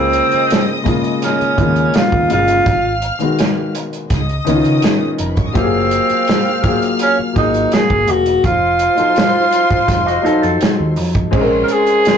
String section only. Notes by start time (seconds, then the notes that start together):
Already playing: D#5 D#6
2.67 F5 F6
4.11 D#5 D#6
5.20 A#4 A#5
5.29 B4 B5
5.37 C#5 C#6
5.47 D#5 D#6
5.55 F5 F6
8.44 C5 C6
11.33 C5 C6